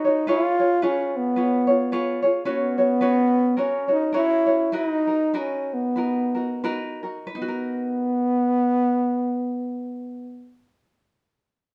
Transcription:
Already playing: trombone D#4
0.05 ukulele D#4 F#4 C#5
0.27 ukulele F4 G#4 B4 C#5, trombone F4
0.59 ukulele F4 G#4 C#5
0.82 trombone C#4, ukulele F4 G#4 B4 C#5
1.16 trombone B3
1.36 ukulele F4 G#4 B4 C#5
1.67 ukulele F4 G#4 C#5
1.92 ukulele F4 G#4 B4 C#5
2.22 ukulele F4 G#4 C#5
2.45 trombone B3, ukulele C#4 F#4 B4 C#5
2.78 ukulele C#4 F#4 C#5
3.01 ukulele C#4 F#4 B4 C#5
3.57 ukulele C#4 F#4 A#4 C#5, trombone C#4
3.88 ukulele C#4 F#4 C#5, trombone D#4
4.12 ukulele C#4 F#4 A#4 C#5, trombone E4
4.46 ukulele C#4 F#4 C#5
4.72 ukulele D#4 F#4 A#4 B4, trombone E4
4.87 trombone D#4
5.07 ukulele D#4 F#4 A#4
5.34 ukulele D#4 F#4 A#4 B4
5.38 trombone C#4
5.73 trombone B3
5.96 ukulele D#4 F#4 A#4 B4
6.35 ukulele D#4 F#4 A#4
6.64 ukulele D#4 F#4 A#4 B4
7.03 ukulele D#4 F#4 A#4
7.27 ukulele B4
7.35 trombone B3, ukulele D#4
7.42 ukulele F#4
7.48 ukulele A#4

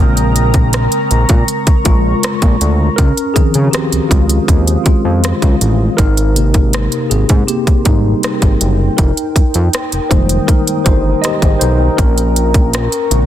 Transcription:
Already playing: tine electric piano C#3, ambient pad A#4 A#5
0.00 analog synth bass A#1, tine electric piano G#3 C4, ambient pad C#6
0.17 closed hi-hat
0.36 closed hi-hat
0.54 kick, closed hi-hat
0.73 cross-stick, closed hi-hat
0.92 closed hi-hat
1.11 analog synth bass A#1, closed hi-hat
1.29 analog synth bass A#2, kick, closed hi-hat
1.48 closed hi-hat
1.67 kick, closed hi-hat
1.85 analog synth bass A#1, tine electric piano G#3 F4, kick, closed hi-hat
2.23 cross-stick, closed hi-hat
2.42 analog synth bass A#1, kick, closed hi-hat
2.61 analog synth bass D2, closed hi-hat
2.96 analog synth bass C#2, tine electric piano C#4 A#4, ambient pad C5 F5 D#6, kick, closed hi-hat
3.17 closed hi-hat
3.34 analog synth bass C#3, tine electric piano D#3 F3 C4 G#4, kick, closed hi-hat
3.54 analog synth bass C#3, closed hi-hat
3.65 tine electric piano F#4
3.71 tine electric piano C4 G4, cross-stick, closed hi-hat
3.92 analog synth bass C#2, closed hi-hat
4.09 analog synth bass C#2, tine electric piano G#3 F4, kick, closed hi-hat
4.29 closed hi-hat
4.48 analog synth bass D#2, kick, closed hi-hat
4.67 closed hi-hat
4.84 analog synth bass F2, tine electric piano G#3 F4, kick, closed hi-hat
5.05 analog synth bass F2
5.24 cross-stick, closed hi-hat
5.42 analog synth bass C#2, kick, closed hi-hat
5.61 analog synth bass A1, closed hi-hat
5.97 analog synth bass G#1, tine electric piano D#4 A#4, ambient pad A#4 G5 C6, kick, closed hi-hat
6.17 closed hi-hat
6.35 tine electric piano C3 A#3 G4, closed hi-hat
6.54 kick, closed hi-hat
6.73 cross-stick, closed hi-hat
6.92 closed hi-hat
7.10 analog synth bass G#1, tine electric piano C4 G#4, closed hi-hat
7.29 analog synth bass G#2, kick, closed hi-hat
7.47 tine electric piano A#3 G4, closed hi-hat
7.67 kick, closed hi-hat
7.85 analog synth bass G#1, tine electric piano G3 D#4, kick, closed hi-hat
8.23 cross-stick, closed hi-hat
8.42 analog synth bass G#1, kick, closed hi-hat
8.61 analog synth bass F#1, closed hi-hat
8.97 analog synth bass F1, tine electric piano D#4 A#4, ambient pad A#4 A#5 D#6, kick, closed hi-hat
9.17 closed hi-hat
9.36 analog synth bass F2, kick, closed hi-hat
9.54 analog synth bass F2, closed hi-hat
9.73 cross-stick, closed hi-hat
9.92 analog synth bass F1, closed hi-hat
10.09 analog synth bass F1, tine electric piano D#3 G3 G#3 A#3 D#4 C5, kick, closed hi-hat
10.29 closed hi-hat
10.47 tine electric piano D#4 A#4, kick, closed hi-hat
10.67 closed hi-hat
10.84 analog synth bass G1, tine electric piano D#4 C5, kick, closed hi-hat
11.22 tine electric piano G4 D#5, cross-stick, closed hi-hat
11.42 analog synth bass G#1, kick, closed hi-hat
11.59 analog synth bass B1, tine electric piano D#4 C5, closed hi-hat
11.97 analog synth bass A#1, tine electric piano C#4 A#4, ambient pad C#6, kick, closed hi-hat
12.18 closed hi-hat
12.36 closed hi-hat
12.54 kick, closed hi-hat
12.73 cross-stick, closed hi-hat
12.92 closed hi-hat
13.10 analog synth bass A#1, tine electric piano C#3 G#3 C4, closed hi-hat

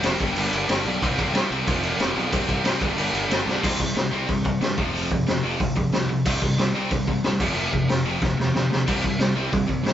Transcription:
0.03 picked electric bass F1, distorted electric guitar C3 G3 C4, snare, crash
0.19 picked electric bass G1, distorted electric guitar G2 D3 G3, kick, crash
0.36 picked electric bass G1, distorted electric guitar G2 D3 G3, crash
0.52 picked electric bass G1, distorted electric guitar G2 D3 G3, crash
0.69 picked electric bass G1, distorted electric guitar G2 D3 G3, snare, crash
0.85 picked electric bass B1, distorted electric guitar G2 D3 G3, crash
1.02 picked electric bass C2, distorted electric guitar C3 G3 C4, kick, crash
1.18 picked electric bass C2, distorted electric guitar C3 G3 C4, kick, crash
1.33 picked electric bass C2, distorted electric guitar C3 G3 C4, snare, crash
1.51 picked electric bass C2, distorted electric guitar C3 G3 C4, crash
1.67 picked electric bass F1, distorted electric guitar F2 C3 F3, kick, crash
1.83 distorted electric guitar F2 C3 F3, crash
2.00 picked electric bass F1, distorted electric guitar F2 C3 F3, snare, crash
2.16 picked electric bass B1, distorted electric guitar F2 C3 F3, crash
2.32 picked electric bass C2, distorted electric guitar C3 G3 C4, kick, crash
2.48 picked electric bass C2, distorted electric guitar C3 G3 C4, kick, crash
2.64 picked electric bass C2, distorted electric guitar C3 G3 C4, snare, crash
2.81 picked electric bass G1, distorted electric guitar G2 D3 G3, kick, crash
2.96 picked electric bass G1, distorted electric guitar G2 D3 G3, crash
3.13 picked electric bass G1, distorted electric guitar G2 D3 G3, crash
3.29 picked electric bass G1, distorted electric guitar G2 D3 G3, snare, crash
3.46 picked electric bass C2, distorted electric guitar G2 D3 G3, snare
3.62 picked electric bass C2, distorted electric guitar C3 G3 C4, kick, crash
3.79 distorted electric guitar C3 G3, kick
3.94 picked electric bass C2, distorted electric guitar C3 G3, snare, open hi-hat
4.11 picked electric bass C2, distorted electric guitar C3 G3 C4
4.28 picked electric bass C2, distorted electric guitar C3 G3, kick, open hi-hat
4.45 distorted electric guitar C3 G3, kick
4.61 picked electric bass G2, distorted electric guitar C3 G3, snare, open hi-hat
4.77 picked electric bass F1, distorted electric guitar F2 C3 F3, kick
4.93 picked electric bass F1, distorted electric guitar F2 C3 F3, open hi-hat
5.11 picked electric bass F1, distorted electric guitar F2 C3, kick
5.26 picked electric bass F1, distorted electric guitar F2 C3, snare, open hi-hat
5.41 picked electric bass F1, distorted electric guitar F2 C3 F3
5.59 picked electric bass A1, distorted electric guitar F2 C3, kick, open hi-hat
5.75 picked electric bass F1, distorted electric guitar F2 C3, kick
5.91 picked electric bass C2, distorted electric guitar F2 C3, snare, open hi-hat
6.09 distorted electric guitar F2 C3
6.25 picked electric bass C2, distorted electric guitar C3 G3 C4, kick, crash
6.42 distorted electric guitar C3 G3, kick
6.57 picked electric bass C2, distorted electric guitar C3 G3, snare, open hi-hat
6.73 picked electric bass C2, distorted electric guitar C3 G3 C4
6.91 picked electric bass C2, distorted electric guitar C3 G3, kick, open hi-hat
7.07 distorted electric guitar C3 G3, kick
7.23 picked electric bass A1, distorted electric guitar C3 G3, snare, open hi-hat
7.40 picked electric bass F1, distorted electric guitar F2 C3 F3, kick, crash
7.55 picked electric bass F1, distorted electric guitar F2 C3 F3
7.72 picked electric bass F1, distorted electric guitar F2 C3, kick
7.88 picked electric bass F1, distorted electric guitar F2 C3, snare, open hi-hat
8.05 picked electric bass F1, distorted electric guitar F2 C3 F3
8.21 picked electric bass A1, distorted electric guitar F2 C3, kick, snare
8.37 picked electric bass F1, distorted electric guitar F2 C3, snare
8.53 picked electric bass D2, distorted electric guitar F2 C3, snare
8.70 distorted electric guitar F2 C3, snare
8.86 picked electric bass C2, distorted electric guitar C3 G3 C4, kick, crash
9.03 distorted electric guitar C3 G3, kick
9.19 picked electric bass C2, distorted electric guitar C3 G3, snare, open hi-hat
9.36 picked electric bass C2, distorted electric guitar C3 G3 C4
9.51 picked electric bass C2, distorted electric guitar C3 G3, kick, open hi-hat
9.68 distorted electric guitar C3 G3, kick
9.84 picked electric bass A1, distorted electric guitar C3 G3, snare, open hi-hat

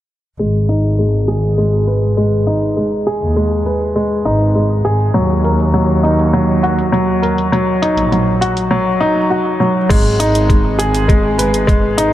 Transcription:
0.39 double bass section G#1, upright piano G#3, closed hi-hat
0.69 upright piano D#4, closed hi-hat
0.84 closed hi-hat
0.99 upright piano G#3, closed hi-hat
1.28 upright piano G#4, closed hi-hat
1.44 closed hi-hat
1.58 upright piano G#3, closed hi-hat
1.87 upright piano B4, closed hi-hat
2.03 closed hi-hat
2.17 upright piano G#3, closed hi-hat
2.47 upright piano D#4, closed hi-hat
2.62 closed hi-hat
2.77 upright piano G#3, closed hi-hat
3.07 upright piano G#4, closed hi-hat
3.22 double bass section D#2, closed hi-hat
3.36 upright piano G#3, closed hi-hat
3.66 upright piano B4, closed hi-hat
3.81 closed hi-hat
3.96 upright piano G#3, closed hi-hat
4.25 double bass section G#1, upright piano D#4, closed hi-hat
4.41 closed hi-hat
4.55 upright piano G#3, closed hi-hat
4.85 double bass section G#1, upright piano G#4, closed hi-hat
5.00 closed hi-hat
5.14 double bass section D#2, upright piano F#3, closed hi-hat
5.44 upright piano A#4, closed hi-hat
5.60 closed hi-hat
5.74 upright piano F#3, closed hi-hat
6.03 upright piano D#4, closed hi-hat
6.19 closed hi-hat
6.33 upright piano F#3, closed hi-hat
6.63 upright piano F#4, closed hi-hat
6.79 closed hi-hat
6.92 upright piano F#3, closed hi-hat
7.22 upright piano A#4, closed hi-hat
7.38 closed hi-hat
7.52 upright piano F#3, closed hi-hat
7.82 upright piano D#4, closed hi-hat
7.97 double bass section A#1, closed hi-hat
8.12 upright piano F#3, closed hi-hat
8.41 upright piano F#4, closed hi-hat
8.57 closed hi-hat
8.71 upright piano F#3
9.01 upright piano D#4
9.30 upright piano F#4
9.60 upright piano F#3
9.89 double bass section G#1, upright piano G#3, string section G#3 B3 D#4, kick, closed hi-hat, crash
10.20 upright piano D#4, closed hi-hat
10.35 closed hi-hat
10.49 upright piano G#3, kick, closed hi-hat
10.79 upright piano G#4, closed hi-hat
10.95 closed hi-hat
11.08 upright piano G#3, kick, closed hi-hat
11.38 upright piano B4, closed hi-hat
11.54 closed hi-hat
11.67 upright piano G#3, kick, closed hi-hat
11.98 upright piano D#4, closed hi-hat

